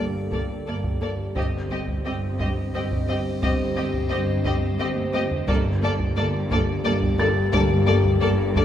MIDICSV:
0, 0, Header, 1, 11, 480
1, 0, Start_track
1, 0, Key_signature, -2, "minor"
1, 0, Tempo, 692841
1, 946, Time_signature, 3, 2, 24, 8
1, 1904, Tempo, 683371
1, 6049, End_track
2, 0, Start_track
2, 0, Title_t, "Felt piano"
2, 0, Program_c, 0, 0
2, 0, Control_c, 0, 64, 127
2, 960, Control_c, 0, 64, 0
2, 1078, Control_c, 0, 64, 127
2, 3841, Control_c, 0, 64, 0
2, 3976, Control_c, 0, 64, 127
2, 5027, Note_on_c, 0, 93, 66
2, 6049, Note_off_c, 0, 93, 0
2, 6049, End_track
3, 0, Start_track
3, 0, Title_t, "Violin section"
3, 0, Program_c, 1, 48
3, 227, Note_on_c, 1, 74, 37
3, 283, Note_off_c, 1, 74, 0
3, 468, Note_on_c, 1, 74, 37
3, 524, Note_off_c, 1, 74, 0
3, 709, Note_on_c, 1, 74, 37
3, 764, Note_off_c, 1, 74, 0
3, 950, Note_on_c, 1, 75, 47
3, 1005, Note_off_c, 1, 75, 0
3, 1186, Note_on_c, 1, 75, 41
3, 1242, Note_off_c, 1, 75, 0
3, 1425, Note_on_c, 1, 75, 46
3, 1480, Note_off_c, 1, 75, 0
3, 1660, Note_on_c, 1, 75, 45
3, 1716, Note_off_c, 1, 75, 0
3, 1902, Note_on_c, 1, 75, 44
3, 1958, Note_off_c, 1, 75, 0
3, 2142, Note_on_c, 1, 75, 50
3, 2198, Note_off_c, 1, 75, 0
3, 2382, Note_on_c, 1, 75, 64
3, 2438, Note_off_c, 1, 75, 0
3, 2620, Note_on_c, 1, 75, 53
3, 2677, Note_off_c, 1, 75, 0
3, 2852, Note_on_c, 1, 75, 60
3, 2908, Note_off_c, 1, 75, 0
3, 3094, Note_on_c, 1, 75, 57
3, 3150, Note_off_c, 1, 75, 0
3, 3338, Note_on_c, 1, 75, 59
3, 3394, Note_off_c, 1, 75, 0
3, 3580, Note_on_c, 1, 75, 58
3, 3636, Note_off_c, 1, 75, 0
3, 3819, Note_on_c, 1, 74, 66
3, 3876, Note_off_c, 1, 74, 0
3, 4068, Note_on_c, 1, 74, 65
3, 4124, Note_off_c, 1, 74, 0
3, 4309, Note_on_c, 1, 74, 63
3, 4365, Note_off_c, 1, 74, 0
3, 4545, Note_on_c, 1, 74, 64
3, 4601, Note_off_c, 1, 74, 0
3, 4784, Note_on_c, 1, 74, 70
3, 4840, Note_off_c, 1, 74, 0
3, 5025, Note_on_c, 1, 74, 56
3, 5081, Note_off_c, 1, 74, 0
3, 5260, Note_on_c, 1, 74, 82
3, 5316, Note_off_c, 1, 74, 0
3, 5500, Note_on_c, 1, 74, 66
3, 5556, Note_off_c, 1, 74, 0
3, 5744, Note_on_c, 1, 74, 63
3, 5800, Note_off_c, 1, 74, 0
3, 5988, Note_on_c, 1, 74, 64
3, 6044, Note_off_c, 1, 74, 0
3, 6049, End_track
4, 0, Start_track
4, 0, Title_t, "Ambient pad"
4, 0, Program_c, 2, 92
4, 0, Note_on_c, 2, 67, 51
4, 0, Note_on_c, 2, 69, 48
4, 0, Note_on_c, 2, 74, 46
4, 919, Note_off_c, 2, 69, 0
4, 920, Note_off_c, 2, 67, 0
4, 920, Note_off_c, 2, 74, 0
4, 942, Note_on_c, 2, 67, 53
4, 947, Note_on_c, 2, 75, 51
4, 948, Note_on_c, 2, 72, 48
4, 3797, Note_off_c, 2, 67, 0
4, 3827, Note_off_c, 2, 75, 0
4, 3828, Note_off_c, 2, 72, 0
4, 3829, Note_on_c, 2, 69, 60
4, 3830, Note_on_c, 2, 74, 64
4, 3833, Note_on_c, 2, 67, 56
4, 6049, Note_off_c, 2, 67, 0
4, 6049, Note_off_c, 2, 69, 0
4, 6049, Note_off_c, 2, 74, 0
4, 6049, End_track
5, 0, Start_track
5, 0, Title_t, "Violin section"
5, 0, Program_c, 3, 48
5, 221, Note_on_c, 3, 69, 33
5, 277, Note_off_c, 3, 69, 0
5, 464, Note_on_c, 3, 69, 38
5, 520, Note_off_c, 3, 69, 0
5, 706, Note_on_c, 3, 69, 38
5, 761, Note_off_c, 3, 69, 0
5, 945, Note_on_c, 3, 67, 48
5, 1000, Note_off_c, 3, 67, 0
5, 1188, Note_on_c, 3, 67, 48
5, 1244, Note_off_c, 3, 67, 0
5, 1428, Note_on_c, 3, 67, 43
5, 1483, Note_off_c, 3, 67, 0
5, 1670, Note_on_c, 3, 67, 44
5, 1725, Note_off_c, 3, 67, 0
5, 1910, Note_on_c, 3, 67, 47
5, 1966, Note_off_c, 3, 67, 0
5, 2153, Note_on_c, 3, 67, 47
5, 2210, Note_off_c, 3, 67, 0
5, 2387, Note_on_c, 3, 67, 50
5, 2443, Note_off_c, 3, 67, 0
5, 2623, Note_on_c, 3, 67, 53
5, 2679, Note_off_c, 3, 67, 0
5, 2866, Note_on_c, 3, 67, 57
5, 2922, Note_off_c, 3, 67, 0
5, 3107, Note_on_c, 3, 67, 54
5, 3163, Note_off_c, 3, 67, 0
5, 3348, Note_on_c, 3, 67, 59
5, 3404, Note_off_c, 3, 67, 0
5, 3591, Note_on_c, 3, 67, 58
5, 3647, Note_off_c, 3, 67, 0
5, 3830, Note_on_c, 3, 69, 68
5, 3886, Note_off_c, 3, 69, 0
5, 4073, Note_on_c, 3, 69, 67
5, 4129, Note_off_c, 3, 69, 0
5, 4315, Note_on_c, 3, 69, 65
5, 4372, Note_off_c, 3, 69, 0
5, 4552, Note_on_c, 3, 69, 55
5, 4608, Note_off_c, 3, 69, 0
5, 4789, Note_on_c, 3, 69, 62
5, 4845, Note_off_c, 3, 69, 0
5, 5030, Note_on_c, 3, 69, 70
5, 5087, Note_off_c, 3, 69, 0
5, 5270, Note_on_c, 3, 69, 70
5, 5327, Note_off_c, 3, 69, 0
5, 5500, Note_on_c, 3, 69, 68
5, 5556, Note_off_c, 3, 69, 0
5, 5742, Note_on_c, 3, 69, 69
5, 5798, Note_off_c, 3, 69, 0
5, 5980, Note_on_c, 3, 69, 61
5, 6036, Note_off_c, 3, 69, 0
5, 6049, End_track
6, 0, Start_track
6, 0, Title_t, "French horn section"
6, 0, Program_c, 4, 60
6, 0, Note_on_c, 4, 58, 39
6, 0, Note_on_c, 4, 67, 41
6, 917, Note_off_c, 4, 58, 0
6, 918, Note_off_c, 4, 67, 0
6, 948, Note_on_c, 4, 67, 54
6, 952, Note_on_c, 4, 60, 50
6, 3712, Note_off_c, 4, 60, 0
6, 3712, Note_off_c, 4, 67, 0
6, 3831, Note_on_c, 4, 67, 80
6, 3832, Note_on_c, 4, 58, 70
6, 6049, Note_off_c, 4, 58, 0
6, 6049, Note_off_c, 4, 67, 0
6, 6049, End_track
7, 0, Start_track
7, 0, Title_t, "Viola section"
7, 0, Program_c, 5, 48
7, 223, Note_on_c, 5, 58, 38
7, 278, Note_off_c, 5, 58, 0
7, 466, Note_on_c, 5, 58, 42
7, 521, Note_off_c, 5, 58, 0
7, 703, Note_on_c, 5, 58, 38
7, 758, Note_off_c, 5, 58, 0
7, 937, Note_on_c, 5, 60, 43
7, 993, Note_off_c, 5, 60, 0
7, 1178, Note_on_c, 5, 60, 41
7, 1234, Note_off_c, 5, 60, 0
7, 1421, Note_on_c, 5, 60, 48
7, 1477, Note_off_c, 5, 60, 0
7, 1659, Note_on_c, 5, 60, 42
7, 1715, Note_off_c, 5, 60, 0
7, 1901, Note_on_c, 5, 60, 51
7, 1957, Note_off_c, 5, 60, 0
7, 2141, Note_on_c, 5, 60, 46
7, 2197, Note_off_c, 5, 60, 0
7, 2377, Note_on_c, 5, 60, 53
7, 2433, Note_off_c, 5, 60, 0
7, 2618, Note_on_c, 5, 60, 48
7, 2674, Note_off_c, 5, 60, 0
7, 2857, Note_on_c, 5, 60, 54
7, 2914, Note_off_c, 5, 60, 0
7, 3101, Note_on_c, 5, 60, 49
7, 3157, Note_off_c, 5, 60, 0
7, 3342, Note_on_c, 5, 60, 63
7, 3398, Note_off_c, 5, 60, 0
7, 3580, Note_on_c, 5, 60, 59
7, 3636, Note_off_c, 5, 60, 0
7, 3823, Note_on_c, 5, 58, 67
7, 3879, Note_off_c, 5, 58, 0
7, 4061, Note_on_c, 5, 58, 58
7, 4117, Note_off_c, 5, 58, 0
7, 4300, Note_on_c, 5, 58, 66
7, 4356, Note_off_c, 5, 58, 0
7, 4542, Note_on_c, 5, 58, 59
7, 4598, Note_off_c, 5, 58, 0
7, 4782, Note_on_c, 5, 58, 67
7, 4838, Note_off_c, 5, 58, 0
7, 5024, Note_on_c, 5, 58, 65
7, 5080, Note_off_c, 5, 58, 0
7, 5267, Note_on_c, 5, 58, 69
7, 5323, Note_off_c, 5, 58, 0
7, 5502, Note_on_c, 5, 58, 56
7, 5558, Note_off_c, 5, 58, 0
7, 5746, Note_on_c, 5, 58, 69
7, 5802, Note_off_c, 5, 58, 0
7, 5989, Note_on_c, 5, 58, 61
7, 6045, Note_off_c, 5, 58, 0
7, 6049, End_track
8, 0, Start_track
8, 0, Title_t, "Cello section"
8, 0, Program_c, 6, 48
8, 0, Note_on_c, 6, 43, 42
8, 127, Note_off_c, 6, 43, 0
8, 227, Note_on_c, 6, 43, 55
8, 371, Note_off_c, 6, 43, 0
8, 466, Note_on_c, 6, 43, 38
8, 610, Note_off_c, 6, 43, 0
8, 702, Note_on_c, 6, 43, 37
8, 848, Note_off_c, 6, 43, 0
8, 947, Note_on_c, 6, 43, 57
8, 1091, Note_off_c, 6, 43, 0
8, 1184, Note_on_c, 6, 43, 41
8, 1329, Note_off_c, 6, 43, 0
8, 1428, Note_on_c, 6, 43, 49
8, 1571, Note_off_c, 6, 43, 0
8, 1664, Note_on_c, 6, 43, 63
8, 1808, Note_off_c, 6, 43, 0
8, 1905, Note_on_c, 6, 43, 50
8, 2049, Note_off_c, 6, 43, 0
8, 2143, Note_on_c, 6, 43, 44
8, 2287, Note_off_c, 6, 43, 0
8, 2383, Note_on_c, 6, 43, 70
8, 2527, Note_off_c, 6, 43, 0
8, 2620, Note_on_c, 6, 43, 53
8, 2764, Note_off_c, 6, 43, 0
8, 2861, Note_on_c, 6, 43, 56
8, 3006, Note_off_c, 6, 43, 0
8, 3097, Note_on_c, 6, 43, 70
8, 3244, Note_off_c, 6, 43, 0
8, 3341, Note_on_c, 6, 43, 56
8, 3487, Note_off_c, 6, 43, 0
8, 3584, Note_on_c, 6, 43, 62
8, 3729, Note_off_c, 6, 43, 0
8, 3826, Note_on_c, 6, 43, 87
8, 3971, Note_off_c, 6, 43, 0
8, 4065, Note_on_c, 6, 43, 61
8, 4210, Note_off_c, 6, 43, 0
8, 4303, Note_on_c, 6, 43, 62
8, 4449, Note_off_c, 6, 43, 0
8, 4544, Note_on_c, 6, 43, 90
8, 4689, Note_off_c, 6, 43, 0
8, 4786, Note_on_c, 6, 43, 69
8, 4931, Note_off_c, 6, 43, 0
8, 5028, Note_on_c, 6, 43, 67
8, 5172, Note_off_c, 6, 43, 0
8, 5265, Note_on_c, 6, 43, 95
8, 5409, Note_off_c, 6, 43, 0
8, 5505, Note_on_c, 6, 43, 65
8, 5650, Note_off_c, 6, 43, 0
8, 5746, Note_on_c, 6, 43, 68
8, 5890, Note_off_c, 6, 43, 0
8, 5985, Note_on_c, 6, 43, 94
8, 6049, Note_off_c, 6, 43, 0
8, 6049, End_track
9, 0, Start_track
9, 0, Title_t, "Cello section"
9, 0, Program_c, 7, 48
9, 0, Note_on_c, 7, 43, 49
9, 411, Note_off_c, 7, 43, 0
9, 467, Note_on_c, 7, 43, 39
9, 890, Note_off_c, 7, 43, 0
9, 946, Note_on_c, 7, 43, 52
9, 1371, Note_off_c, 7, 43, 0
9, 1428, Note_on_c, 7, 43, 63
9, 1849, Note_off_c, 7, 43, 0
9, 1901, Note_on_c, 7, 43, 51
9, 2327, Note_off_c, 7, 43, 0
9, 2385, Note_on_c, 7, 43, 62
9, 2805, Note_off_c, 7, 43, 0
9, 2864, Note_on_c, 7, 43, 73
9, 3287, Note_off_c, 7, 43, 0
9, 3345, Note_on_c, 7, 43, 64
9, 3771, Note_off_c, 7, 43, 0
9, 3826, Note_on_c, 7, 43, 75
9, 4251, Note_off_c, 7, 43, 0
9, 4310, Note_on_c, 7, 43, 87
9, 4732, Note_off_c, 7, 43, 0
9, 4788, Note_on_c, 7, 43, 68
9, 5211, Note_off_c, 7, 43, 0
9, 5268, Note_on_c, 7, 43, 82
9, 5690, Note_off_c, 7, 43, 0
9, 5745, Note_on_c, 7, 43, 93
9, 6049, Note_off_c, 7, 43, 0
9, 6049, End_track
10, 0, Start_track
10, 0, Title_t, "Double bass section"
10, 0, Program_c, 8, 48
10, 0, Note_on_c, 8, 31, 47
10, 411, Note_off_c, 8, 31, 0
10, 466, Note_on_c, 8, 31, 47
10, 890, Note_off_c, 8, 31, 0
10, 944, Note_on_c, 8, 31, 51
10, 1369, Note_off_c, 8, 31, 0
10, 1426, Note_on_c, 8, 31, 57
10, 1848, Note_off_c, 8, 31, 0
10, 1902, Note_on_c, 8, 31, 56
10, 2327, Note_off_c, 8, 31, 0
10, 2384, Note_on_c, 8, 31, 69
10, 2805, Note_off_c, 8, 31, 0
10, 2859, Note_on_c, 8, 31, 62
10, 3285, Note_off_c, 8, 31, 0
10, 3342, Note_on_c, 8, 31, 66
10, 3769, Note_off_c, 8, 31, 0
10, 3824, Note_on_c, 8, 31, 80
10, 4249, Note_off_c, 8, 31, 0
10, 4308, Note_on_c, 8, 31, 73
10, 4732, Note_off_c, 8, 31, 0
10, 4792, Note_on_c, 8, 31, 80
10, 5213, Note_off_c, 8, 31, 0
10, 5265, Note_on_c, 8, 31, 88
10, 5688, Note_off_c, 8, 31, 0
10, 5745, Note_on_c, 8, 31, 85
10, 6049, Note_off_c, 8, 31, 0
10, 6049, End_track
11, 0, Start_track
11, 0, Title_t, "Taiko and cinematic ensemble drums"
11, 221, Note_on_c, 9, 41, 73
11, 290, Note_off_c, 9, 41, 0
11, 581, Note_on_c, 9, 41, 73
11, 651, Note_off_c, 9, 41, 0
11, 942, Note_on_c, 9, 41, 70
11, 1011, Note_off_c, 9, 41, 0
11, 1301, Note_on_c, 9, 41, 61
11, 1370, Note_off_c, 9, 41, 0
11, 1662, Note_on_c, 9, 41, 76
11, 1731, Note_off_c, 9, 41, 0
11, 2021, Note_on_c, 9, 41, 75
11, 2091, Note_off_c, 9, 41, 0
11, 2381, Note_on_c, 9, 41, 80
11, 2452, Note_off_c, 9, 41, 0
11, 2739, Note_on_c, 9, 41, 73
11, 2809, Note_off_c, 9, 41, 0
11, 3098, Note_on_c, 9, 41, 75
11, 3168, Note_off_c, 9, 41, 0
11, 3462, Note_on_c, 9, 48, 80
11, 3532, Note_off_c, 9, 48, 0
11, 3583, Note_on_c, 9, 48, 85
11, 3653, Note_off_c, 9, 48, 0
11, 3704, Note_on_c, 9, 43, 84
11, 3775, Note_off_c, 9, 43, 0
11, 3825, Note_on_c, 9, 41, 91
11, 3895, Note_off_c, 9, 41, 0
11, 4185, Note_on_c, 9, 41, 74
11, 4255, Note_off_c, 9, 41, 0
11, 4548, Note_on_c, 9, 41, 77
11, 4619, Note_off_c, 9, 41, 0
11, 4907, Note_on_c, 9, 41, 82
11, 4978, Note_off_c, 9, 41, 0
11, 5267, Note_on_c, 9, 41, 91
11, 5337, Note_off_c, 9, 41, 0
11, 5624, Note_on_c, 9, 41, 76
11, 5694, Note_off_c, 9, 41, 0
11, 5984, Note_on_c, 9, 41, 90
11, 6049, Note_off_c, 9, 41, 0
11, 6049, End_track
0, 0, End_of_file